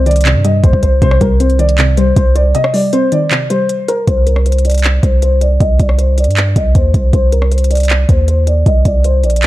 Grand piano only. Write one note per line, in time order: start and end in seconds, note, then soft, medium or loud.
0.06 0.42 D5 medium
0.45 0.61 D#5 medium
0.64 0.80 C5 medium
0.83 0.99 C5 medium
1.02 1.19 C5 loud
1.21 1.38 A#4 medium
1.40 1.57 C5 medium
1.59 1.95 D5 medium
1.97 2.14 C5 medium
2.16 2.33 C5 medium
2.35 2.52 D5 medium
2.55 2.72 D#5 loud
2.74 2.90 D5 medium
2.93 3.10 C5 medium
3.12 3.48 D5 medium
3.50 3.86 C5 medium
3.88 4.05 A#4 medium
4.07 4.24 C5 loud
4.27 4.43 A#4 medium
4.46 4.63 C5 medium
4.65 5.01 D5 medium
5.03 5.20 C5 medium
5.23 5.39 C5 medium
5.41 5.58 D5 medium
5.61 5.77 D#5 loud
5.80 5.97 D5 medium
5.98 6.15 C5 medium
6.18 6.54 D5 medium
6.56 6.73 D#5 medium
6.75 6.92 C5 medium
6.94 7.11 C5 medium
7.14 7.30 C5 loud
7.32 7.49 A#4 medium
7.52 7.68 C5 medium
7.70 8.06 D5 medium
8.09 8.26 C5 medium
8.28 8.45 C5 medium
8.47 8.64 D5 medium
8.66 8.83 D#5 loud
8.85 9.02 D5 medium
9.05 9.21 C5 medium
9.24 9.47 D5 medium